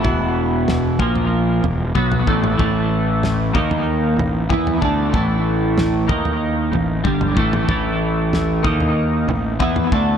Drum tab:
SD |----o-----------|----o-----------|----o-----------|----o-----------|
T2 |------o------o-o|------o-----oo--|------o------o-o|------o-----oo--|
FT |o---o--o--o--o--|o---o--o--o--o--|o---o--o--o--o--|o---o--o--o--o--|
BD |o-----o-----o-o-|o-----o-----o-o-|o-----o-----o-o-|o-----o-----o-o-|